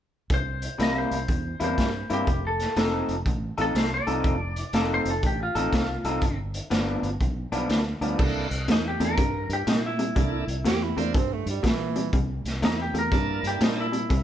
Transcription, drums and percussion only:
0.30 kick medium
0.30 closed hi-hat medium
0.62 closed hi-hat soft
0.80 snare medium
0.80 closed hi-hat medium
1.11 closed hi-hat medium
1.28 kick medium
1.28 closed hi-hat medium
1.60 closed hi-hat medium
1.78 kick medium
1.78 snare medium
1.78 closed hi-hat medium
2.10 closed hi-hat soft
2.27 kick medium
2.27 closed hi-hat medium
2.60 snare soft
2.60 closed hi-hat soft
2.76 snare medium
2.76 closed hi-hat medium
3.09 closed hi-hat soft
3.26 kick medium
3.26 closed hi-hat medium
3.58 closed hi-hat soft
3.75 snare medium
3.75 closed hi-hat medium
4.07 closed hi-hat soft
4.24 kick medium
4.24 closed hi-hat medium
4.56 closed hi-hat soft
4.73 snare medium
4.73 closed hi-hat medium
5.05 closed hi-hat medium
5.23 kick medium
5.23 closed hi-hat medium
5.55 closed hi-hat soft
5.73 kick medium
5.73 snare medium
5.73 closed hi-hat medium
6.05 closed hi-hat medium
6.22 kick medium
6.22 closed hi-hat medium
6.54 closed hi-hat medium
6.71 snare medium
6.71 closed hi-hat medium
7.03 closed hi-hat soft
7.20 kick medium
7.20 closed hi-hat medium
7.52 closed hi-hat soft
7.69 snare loud
7.69 closed hi-hat medium
8.02 closed hi-hat soft
8.19 kick medium
8.19 crash medium
8.51 closed hi-hat soft
8.68 snare medium
8.68 closed hi-hat medium
9.00 closed hi-hat medium
9.18 kick medium
9.18 closed hi-hat medium
9.50 closed hi-hat medium
9.67 snare loud
9.67 closed hi-hat medium
9.99 closed hi-hat medium
10.16 kick medium
10.16 closed hi-hat medium
10.48 closed hi-hat soft
10.65 snare medium
10.65 closed hi-hat medium
10.98 closed hi-hat medium
11.14 kick loud
11.14 closed hi-hat medium
11.47 closed hi-hat soft
11.64 kick medium
11.64 snare medium
11.64 closed hi-hat medium
11.96 closed hi-hat medium
12.13 kick medium
12.13 closed hi-hat medium
12.45 snare soft
12.45 closed hi-hat medium
12.62 snare loud
12.62 closed hi-hat medium
12.95 closed hi-hat medium
13.12 kick medium
13.12 closed hi-hat medium
13.44 closed hi-hat medium
13.61 snare loud
13.61 closed hi-hat medium
13.93 closed hi-hat medium
14.10 kick medium
14.10 closed hi-hat medium

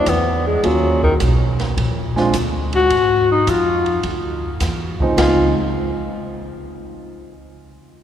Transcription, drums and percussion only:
0.06 kick soft
0.06 hi-hat pedal soft
0.06 ride medium
0.64 kick soft
0.64 ride medium
1.03 kick medium
1.20 hi-hat pedal soft
1.20 ride medium
1.59 snare soft
1.59 ride soft
1.77 kick soft
1.77 ride medium
2.17 snare soft
2.33 kick soft
2.33 hi-hat pedal medium
2.33 ride medium
2.73 ride soft
2.90 kick soft
2.90 ride medium
3.47 kick soft
3.47 hi-hat pedal soft
3.47 ride medium
3.86 ride soft
4.03 kick soft
4.03 ride medium
4.60 kick soft
4.60 snare soft
4.60 hi-hat pedal medium
4.60 ride medium
5.00 kick soft
5.18 snare medium
5.18 ride bell medium

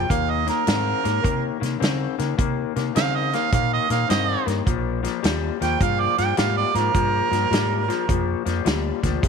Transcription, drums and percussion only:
0.10 kick loud
0.10 closed hi-hat medium
0.47 snare soft
0.47 closed hi-hat medium
0.67 snare loud
0.67 closed hi-hat medium
1.05 snare soft
1.05 closed hi-hat medium
1.24 kick loud
1.24 closed hi-hat medium
1.63 snare soft
1.63 closed hi-hat medium
1.82 snare loud
1.82 closed hi-hat medium
2.19 snare soft
2.19 closed hi-hat medium
2.39 kick loud
2.39 closed hi-hat medium
2.76 snare soft
2.76 closed hi-hat medium
2.96 snare loud
2.96 closed hi-hat medium
3.33 snare soft
3.33 closed hi-hat medium
3.52 kick loud
3.52 closed hi-hat medium
3.90 snare soft
3.90 closed hi-hat medium
4.10 snare loud
4.10 closed hi-hat medium
4.48 snare soft
4.48 closed hi-hat medium
4.67 kick loud
4.67 closed hi-hat medium
5.04 snare soft
5.04 closed hi-hat medium
5.24 snare loud
5.24 closed hi-hat medium
5.62 snare soft
5.62 closed hi-hat medium
5.81 kick loud
5.81 closed hi-hat medium
6.18 snare soft
6.18 closed hi-hat medium
6.37 snare loud
6.37 closed hi-hat medium
6.75 snare soft
6.75 closed hi-hat medium
6.94 kick loud
6.94 closed hi-hat medium
7.33 snare soft
7.33 closed hi-hat medium
7.53 snare loud
7.53 closed hi-hat medium
7.90 snare soft
7.90 closed hi-hat medium
8.09 kick loud
8.09 closed hi-hat medium
8.46 snare soft
8.46 closed hi-hat medium
8.66 snare loud
8.66 closed hi-hat medium
9.03 kick medium
9.03 snare soft
9.03 closed hi-hat medium
9.23 kick loud
9.23 closed hi-hat medium

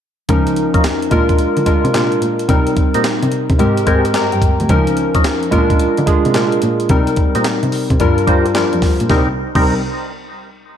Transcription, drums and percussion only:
0.29 kick loud
0.29 closed hi-hat medium
0.47 closed hi-hat medium
0.56 closed hi-hat medium
0.74 kick loud
0.74 closed hi-hat medium
0.84 snare loud
0.84 clap medium
0.84 closed hi-hat medium
1.02 closed hi-hat medium
1.11 kick medium
1.11 closed hi-hat medium
1.29 kick medium
1.29 closed hi-hat medium
1.39 closed hi-hat medium
1.57 closed hi-hat medium
1.66 kick medium
1.66 closed hi-hat medium
1.85 closed hi-hat medium
1.94 snare loud
1.94 clap medium
1.94 closed hi-hat medium
2.12 closed hi-hat soft
2.22 closed hi-hat medium
2.39 closed hi-hat medium
2.49 kick loud
2.49 closed hi-hat medium
2.67 closed hi-hat medium
2.77 kick medium
2.77 closed hi-hat medium
2.94 closed hi-hat medium
3.04 snare loud
3.04 clap medium
3.04 closed hi-hat medium
3.23 closed hi-hat medium
3.32 closed hi-hat medium
3.50 kick loud
3.50 closed hi-hat soft
3.59 closed hi-hat medium
3.77 closed hi-hat medium
3.87 kick medium
3.87 closed hi-hat medium
4.05 closed hi-hat medium
4.14 snare loud
4.14 clap medium
4.14 closed hi-hat medium
4.32 closed hi-hat soft
4.42 kick medium
4.42 closed hi-hat medium
4.60 closed hi-hat medium
4.69 kick loud
4.69 closed hi-hat medium
4.87 closed hi-hat medium
4.97 closed hi-hat medium
5.15 kick loud
5.15 closed hi-hat medium
5.24 snare loud
5.24 clap medium
5.24 closed hi-hat medium
5.43 closed hi-hat soft
5.52 kick medium
5.52 closed hi-hat medium
5.70 kick medium
5.70 closed hi-hat medium
5.79 closed hi-hat medium
5.97 closed hi-hat medium
6.07 kick medium
6.07 closed hi-hat medium
6.25 closed hi-hat medium
6.34 snare loud
6.34 clap medium
6.34 closed hi-hat medium
6.52 closed hi-hat soft
6.62 closed hi-hat medium
6.80 closed hi-hat medium
6.89 kick loud
6.89 closed hi-hat medium
7.07 closed hi-hat medium
7.16 kick medium
7.16 closed hi-hat medium
7.35 closed hi-hat medium
7.44 snare loud
7.44 clap medium
7.44 closed hi-hat medium
7.63 closed hi-hat soft
7.72 open hi-hat medium
7.90 kick medium
7.90 closed hi-hat medium
8.00 kick loud
8.00 closed hi-hat medium
8.18 closed hi-hat medium
8.28 kick loud
8.28 closed hi-hat medium
8.46 closed hi-hat medium
8.55 snare loud
8.55 clap medium
8.55 closed hi-hat medium
8.73 closed hi-hat soft
8.82 kick medium
8.82 snare medium
8.82 open hi-hat medium
9.00 closed hi-hat medium
9.10 kick loud
9.10 snare medium
9.55 kick loud
9.55 crash medium

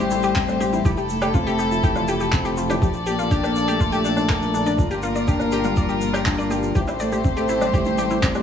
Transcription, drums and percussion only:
0.11 shaker loud
0.23 shaker medium
0.36 kick loud
0.36 clap medium
0.36 shaker medium
0.48 low woodblock medium
0.48 shaker soft
0.61 shaker medium
0.73 shaker soft
0.85 kick loud
0.85 shaker medium
0.97 shaker soft
1.09 shaker medium
1.22 low woodblock medium
1.22 shaker soft
1.34 kick loud
1.34 shaker medium
1.47 shaker soft
1.59 shaker medium
1.72 shaker medium
1.83 kick loud
1.83 shaker medium
1.96 low woodblock medium
1.96 shaker soft
2.08 shaker medium
2.20 shaker soft
2.32 kick loud
2.32 clap medium
2.32 shaker medium
2.45 shaker soft
2.57 shaker medium
2.70 low woodblock medium
2.70 shaker medium
2.82 kick loud
2.82 shaker medium
2.93 shaker soft
3.07 shaker medium
3.19 shaker medium
3.31 kick loud
3.31 shaker medium
3.44 low woodblock medium
3.44 shaker soft
3.56 shaker medium
3.69 shaker soft
3.80 kick loud
3.80 shaker medium
3.92 shaker soft
4.05 shaker medium
4.17 low woodblock medium
4.17 shaker soft
4.29 kick loud
4.29 clap medium
4.29 shaker medium
4.42 shaker soft
4.54 shaker medium
4.66 shaker medium
4.79 kick loud
4.79 shaker medium
4.91 shaker soft
5.02 shaker medium
5.16 shaker medium
5.28 kick loud
5.28 shaker medium
5.39 low woodblock medium
5.39 shaker soft
5.52 shaker medium
5.64 shaker soft
5.77 kick loud
5.77 shaker medium
5.89 shaker soft
6.01 shaker medium
6.14 low woodblock medium
6.14 shaker medium
6.26 kick loud
6.26 clap medium
6.26 shaker medium
6.39 shaker soft
6.51 shaker medium
6.63 shaker soft
6.75 kick loud
6.75 shaker medium
6.88 low woodblock medium
6.88 shaker soft
7.00 shaker medium
7.12 shaker soft
7.24 kick medium
7.24 shaker medium
7.37 shaker soft
7.49 shaker medium
7.61 low woodblock medium
7.61 shaker medium
7.74 kick loud
7.74 shaker medium
7.85 shaker soft
7.98 shaker medium
8.10 shaker soft
8.23 kick loud
8.23 clap medium
8.23 shaker medium
8.34 low woodblock medium
8.34 shaker soft

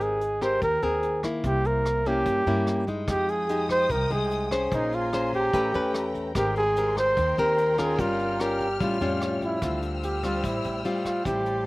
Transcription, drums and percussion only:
0.00 closed hi-hat soft
0.21 closed hi-hat soft
0.41 kick soft
0.41 cross-stick soft
0.41 closed hi-hat soft
0.62 kick medium
0.62 closed hi-hat soft
0.82 closed hi-hat soft
1.03 closed hi-hat soft
1.23 kick soft
1.23 cross-stick medium
1.23 closed hi-hat soft
1.44 kick medium
1.44 closed hi-hat soft
1.65 closed hi-hat soft
1.85 cross-stick medium
1.85 closed hi-hat soft
2.05 kick soft
2.05 closed hi-hat soft
2.26 kick medium
2.26 closed hi-hat soft
2.46 closed hi-hat soft
2.67 cross-stick medium
2.67 closed hi-hat soft
2.87 kick soft
2.87 closed hi-hat soft
3.08 kick medium
3.08 cross-stick medium
3.08 closed hi-hat soft
3.28 closed hi-hat soft
3.49 closed hi-hat soft
3.69 kick soft
3.69 cross-stick medium
3.69 closed hi-hat soft
3.90 kick medium
3.90 closed hi-hat soft
4.10 closed hi-hat soft
4.31 closed hi-hat soft
4.51 kick soft
4.51 cross-stick medium
4.51 closed hi-hat soft
4.72 kick medium
4.72 closed hi-hat soft
4.92 closed hi-hat soft
5.13 cross-stick medium
5.13 closed hi-hat soft
5.33 kick soft
5.33 closed hi-hat soft
5.53 kick medium
5.53 closed hi-hat soft
5.74 closed hi-hat soft
5.94 cross-stick medium
5.94 closed hi-hat soft
6.15 kick soft
6.15 closed hi-hat soft
6.35 kick medium
6.35 cross-stick medium
6.35 closed hi-hat soft
6.56 closed hi-hat soft
6.76 closed hi-hat soft
6.97 kick soft
6.97 cross-stick medium
6.97 closed hi-hat soft
7.17 kick medium
7.17 closed hi-hat soft
7.38 closed hi-hat soft
7.58 closed hi-hat soft
7.78 kick soft
7.78 cross-stick medium
7.78 closed hi-hat soft
7.99 kick medium
7.99 closed hi-hat soft
8.19 closed hi-hat soft
8.40 cross-stick medium
8.40 closed hi-hat soft
8.60 kick soft
8.60 closed hi-hat soft
8.80 kick medium
8.80 closed hi-hat soft
9.01 closed hi-hat soft
9.21 cross-stick medium
9.21 closed hi-hat soft
9.42 kick soft
9.42 closed hi-hat soft
9.62 kick medium
9.62 cross-stick medium
9.62 closed hi-hat medium
9.82 closed hi-hat soft
10.03 closed hi-hat soft
10.23 kick soft
10.23 cross-stick soft
10.23 closed hi-hat soft
10.44 kick medium
10.44 closed hi-hat medium
10.64 closed hi-hat soft
10.85 closed hi-hat soft
11.05 kick soft
11.05 cross-stick medium
11.05 closed hi-hat soft
11.25 kick medium
11.25 closed hi-hat medium
11.46 closed hi-hat soft

